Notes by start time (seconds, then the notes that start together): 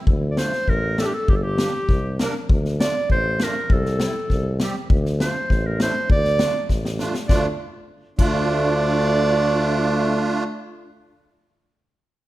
0.07 D2, kick
0.31 D5
0.37 A3 D4 F4 C5, snare
0.53 snare
0.67 A1 A#4, kick
0.97 A3 D4 G4 A4, snare
1.06 G4
1.14 A4
1.28 G1 G4, kick
1.36 A4
1.43 G4
1.58 A#3 D4 G4, snare
1.89 C2, kick, snare
2.19 A#3 D4 A#4, snare
2.49 D2, kick
2.65 snare
2.79 A3 D4 F4 D5, snare
3.10 A1 C5, kick
3.39 A3 D4 F4 A#4, snare
3.70 C2 A4, kick
3.85 snare
3.99 G3 C4 E4, snare
4.30 C2, kick, snare
4.60 G3 C4 G4, snare
4.90 D2, kick
5.05 snare
5.19 A3 D4 F4 C5, snare
5.50 A1, kick, snare
5.66 A#4
5.79 A3 D4 E4 C5, snare
6.09 D2 D5, kick
6.25 snare
6.39 A3 D4 F4, snare
6.69 A1, kick, snare
6.85 snare
6.98 A3 D4 F4, snare
7.14 snare
7.28 D2 A3 D4 F4 D5, kick, snare
8.19 D2 A3 D4 F4 D5, kick, crash